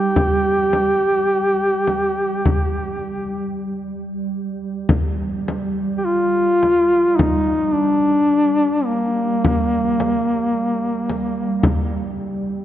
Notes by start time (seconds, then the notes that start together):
Already playing: G3 G4
0.16 frame drum
0.73 frame drum
1.88 frame drum
2.45 frame drum
4.88 G3, frame drum
5.48 frame drum
5.98 G4
6.05 F4
6.63 frame drum
7.16 D#4, frame drum
7.73 D4
8.86 A#3
9.44 frame drum
10.00 frame drum
11.10 frame drum
11.63 frame drum